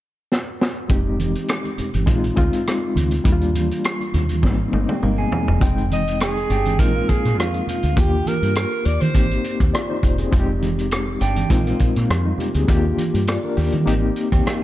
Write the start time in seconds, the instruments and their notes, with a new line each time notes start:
0.32 snare
0.61 snare
0.88 fingered electric bass F1, reed electric piano G#3 C4 D#4 G4, kick, closed hi-hat, muted conga, low conga
1.06 muted conga
1.19 closed hi-hat, high conga
1.35 closed hi-hat
1.48 cross-stick, closed hi-hat
1.64 closed hi-hat, muted conga
1.78 muted fingered electric bass stroke, closed hi-hat, low conga
1.94 fingered electric bass G1, closed hi-hat, high conga
2.06 fingered electric bass A#1, reed electric piano G#3 C4 D#4 F4, kick, closed hi-hat, high conga
2.23 closed hi-hat, muted conga
2.36 fingered electric bass D2, reed electric piano G#3 C4 D#4 F4, kick, closed hi-hat
2.53 closed hi-hat
2.67 cross-stick, closed hi-hat
2.96 fingered electric bass D2, closed hi-hat, high conga, low conga
3.11 closed hi-hat
3.24 fingered electric bass D#2, reed electric piano G3 A#3 D4 E4, kick, closed hi-hat, muted conga, low conga
3.32 reed electric piano F4
3.41 closed hi-hat, muted conga
3.55 closed hi-hat, high conga
3.71 closed hi-hat
3.84 cross-stick, closed hi-hat
4.00 closed hi-hat, muted conga
4.14 fingered electric bass D#2, cross-stick, closed hi-hat, low conga
4.29 closed hi-hat, high conga
4.42 fingered electric bass G#1, reed electric piano G3 A#3 C4 D#4, kick, snare, high conga
4.72 fingered electric bass G1, reed electric piano G#3 A#3 B3 D#4, high tom
4.80 reed electric piano C4
4.89 clean electric guitar G3 C4, high tom
5.02 fingered electric bass G1, clean electric guitar A#3 D#4, mid tom, muted conga
5.18 clean electric guitar D#4 G#4, muted conga
5.31 floor tom, high conga, low conga
5.48 fingered electric bass E1, floor tom
5.61 fingered electric bass F1, reed electric piano G3 C4 D#4 G5, kick, closed hi-hat, low conga
5.67 reed electric piano G#3
5.77 closed hi-hat, muted conga
5.91 alto saxophone D#5, closed hi-hat, high conga
6.08 closed hi-hat
6.20 alto saxophone G#4, cross-stick, closed hi-hat, muted conga
6.36 closed hi-hat, muted conga
6.50 fingered electric bass G1, clean electric guitar D4 G4, closed hi-hat
6.65 closed hi-hat, high conga
6.78 fingered electric bass A#1, reed electric piano G#3 C4 D#4 F4, clean electric guitar A#3 D#4, alto saxophone A#4, kick, closed hi-hat, muted conga, high conga
6.95 clean electric guitar F3 A#3
7.09 fingered electric bass A#1, alto saxophone G#4, kick, closed hi-hat
7.25 fingered electric bass A#2, cross-stick, closed hi-hat
7.38 fingered electric bass F2, alto saxophone F4, cross-stick, closed hi-hat, muted conga
7.54 closed hi-hat, muted conga
7.67 alto saxophone F4, closed hi-hat, low conga
7.83 fingered electric bass D2, closed hi-hat
7.96 fingered electric bass D#2, reed electric piano A#3 D4 F4 G4, alto saxophone G4, kick, closed hi-hat, low conga
8.13 muted conga
8.26 alto saxophone A#4, closed hi-hat, high conga
8.42 fingered electric bass G2, closed hi-hat
8.55 alto saxophone A#4, cross-stick, closed hi-hat
8.85 fingered electric bass D#2, alto saxophone D5, closed hi-hat
9.01 fingered electric bass D#3, alto saxophone C5, closed hi-hat, high conga
9.14 fingered electric bass G#1, reed electric piano A#3 C4 D#4 G4, kick, closed hi-hat, muted conga, high conga
9.31 closed hi-hat
9.44 closed hi-hat
9.60 fingered electric bass D#2, kick, cross-stick, closed hi-hat
9.74 reed electric piano F4 D5, cross-stick, closed hi-hat, muted conga
9.90 reed electric piano D#4 C5, muted conga
10.03 fingered electric bass E1, kick, closed hi-hat, low conga
10.18 reed electric piano C4 G#4, closed hi-hat
10.31 fingered electric bass F1, reed electric piano G#3 C4 D#4 F4, kick, closed hi-hat, muted conga, low conga
10.40 reed electric piano G4
10.49 muted conga
10.62 closed hi-hat, high conga
10.78 closed hi-hat
10.91 cross-stick, closed hi-hat, muted conga
11.07 muted conga
11.21 fingered electric bass G1, clean electric guitar D4 G4, closed hi-hat
11.36 closed hi-hat, high conga
11.49 fingered electric bass A#1, reed electric piano G#3 C4 D#4 F4, clean electric guitar A#3 D#4, kick, closed hi-hat, muted conga, high conga
11.66 clean electric guitar F3 A#3, closed hi-hat, muted conga
11.79 fingered electric bass A#1, kick, closed hi-hat
11.96 fingered electric bass A#2, cross-stick, closed hi-hat
12.10 fingered electric bass F2, cross-stick, closed hi-hat, muted conga
12.25 reed electric piano G3 D#4, muted conga
12.38 reed electric piano A#3 G4, closed hi-hat, low conga
12.54 fingered electric bass D2, reed electric piano C4 G#4, closed hi-hat
12.68 fingered electric bass D#2, reed electric piano A#3 D4 F4 G4, kick, closed hi-hat, muted conga, low conga
12.97 closed hi-hat, high conga
13.14 fingered electric bass G2, closed hi-hat
13.27 reed electric piano F4 D5, cross-stick, closed hi-hat, muted conga
13.43 reed electric piano D4 A#4, muted conga
13.57 fingered electric bass D#2, reed electric piano A#3 G4, cross-stick, open hi-hat
13.72 fingered electric bass D#3, reed electric piano G3 D#4, closed hi-hat, high conga
13.86 fingered electric bass G#1, reed electric piano A#3 C4 D#4 G4, closed hi-hat, high conga
14.16 closed hi-hat
14.32 fingered electric bass D#2, clean electric guitar G3 C4, kick, cross-stick, closed hi-hat
14.46 clean electric guitar A#3 D#4, muted fingered electric bass stroke, cross-stick, closed hi-hat, muted conga